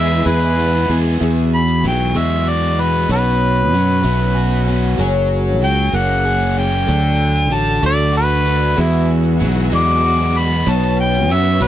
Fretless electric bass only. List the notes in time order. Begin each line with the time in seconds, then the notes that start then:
Already playing: E2
0.26 E2
0.90 E2
1.21 E2
1.84 B1
2.15 E2
3.09 B1
3.73 F#2
4.04 B1
4.99 F#1
5.61 C#2
5.93 F#1
6.89 D2
7.51 A1
7.83 D2
8.78 E2
9.41 B1
9.73 E2
10.67 B1
11.30 F#2
11.61 B1